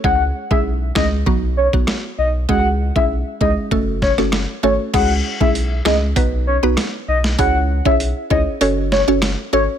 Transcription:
<<
  \new Staff \with { instrumentName = "Soft synth lead" } { \time 4/4 \key cis \minor \tempo 4 = 98 fis''8 r16 e''16 r8 dis''16 r8. cis''16 r8. dis''16 r16 | fis''8 r16 e''16 r8 dis''16 r8. cis''16 r8. cis''16 r16 | fis''8 r16 e''16 r8 dis''16 r8. cis''16 r8. dis''16 r16 | fis''8 r16 e''16 r8 dis''16 r8. cis''16 r8. cis''16 r16 | }
  \new Staff \with { instrumentName = "Synth pluck" } { \time 4/4 \key cis \minor <gis cis' e' gis'>8. <gis cis' e' gis'>8. <gis cis' e' gis'>8 <fis b dis' fis'>8. <fis b dis' fis'>16 r4 | <gis cis' e' gis'>8. <gis cis' e' gis'>8. <gis cis' e' gis'>8 <a cis' fis' a'>8. <a cis' fis' a'>8. <a cis' fis' a'>8 | <gis cis' e' gis'>8. <gis cis' e' gis'>8. <gis cis' e' gis'>8 <b dis' fis' b'>8. <b dis' fis' b'>16 r4 | <cis' e' gis' cis''>8. <cis' e' gis' cis''>8. <cis' e' gis' cis''>8 <cis' fis' a' cis''>8. <cis' fis' a' cis''>8. <cis' fis' a' cis''>8 | }
  \new Staff \with { instrumentName = "Analog synth bass" } { \clef bass \time 4/4 \key cis \minor cis,8 r16 b,,8. cis,8 b,,8. b,,16 r8 b,,8 | cis,8. b,,8 r16 cis,16 r16 fis,,8. fis,,8 r16 gis,,16 r16 | cis,8 r16 b,,8. cis,8 b,,8. b,,16 r8 b,,8 | cis,8. b,,8 r16 cis,16 r16 fis,,8. fis,,8 r16 gis,,16 r16 | }
  \new DrumStaff \with { instrumentName = "Drums" } \drummode { \time 4/4 bd8. bd16 r8 <bd ss sn>8 bd8. bd16 <ss sn>4 | bd8. bd16 r8 bd8 bd8 <bd sn>16 ss16 <ss sn>4 | <cymc hh bd>8. bd16 hh8 <ss sn>8 <hh bd>4 <hh ss sn>8. sn16 | <hh bd>8. bd16 hh8 bd8 hh8 sn8 <hh ss sn>4 | }
>>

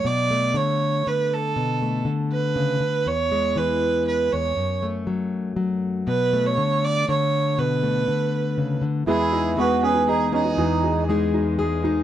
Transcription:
<<
  \new Staff \with { instrumentName = "Fiddle" } { \time 3/4 \key b \dorian \tempo 4 = 120 d''4 cis''4 b'8 a'8~ | a'4 r8 b'4. | cis''4 b'4 b'8 cis''8~ | cis''8 r2 r8 |
b'8. cis''8. d''8 cis''4 | b'2~ b'8 r8 | \key e \major gis'4 b'8 b'8 gis'8 gis'8~ | gis'4 r2 | }
  \new Staff \with { instrumentName = "Accordion" } { \time 3/4 \key b \dorian r2. | r2. | r2. | r2. |
r2. | r2. | \key e \major e'4 fis'8 gis'8 dis'8 dis'8~ | dis'4 r2 | }
  \new Staff \with { instrumentName = "Upright piano" } { \time 3/4 \key b \dorian r2. | r2. | r2. | r2. |
r2. | r2. | \key e \major <e gis'>8 dis'8 gis'8 cis'16 dis'16 gis'8 cis'16 dis'16 | <e gis'>8 dis'8 gis'8 dis'8 gis'8 dis'8 | }
  \new Staff \with { instrumentName = "Steel-string acoustic guitar" } { \clef bass \time 3/4 \key b \dorian << { r8 a2~ a8 | r8 a2~ a8 | r8 gis2~ gis8 | r8 a2~ a8 |
r8 a2~ a8 | r8 a2~ a8 | \key e \major <e gis b>4 <gis b>4 gis'8 b8~ | b4 <gis dis' gis'>4 gis'8 dis'8 | } \\ { b,4 d4 d4 | b,4 d4 cis8 d8 | e,4 e4. e,8 | fis,4 fis4 fis4 |
b,4 d4 d4 | b,4 d4 cis8 d8 | e,2. | e,2. | } >> }
  \new Staff \with { instrumentName = "String section" } { \clef bass \time 3/4 \key b \dorian r2. | r2. | r2. | r2. |
r2. | r2. | \key e \major <e, gis>2.~ | <e, gis>2. | }
>>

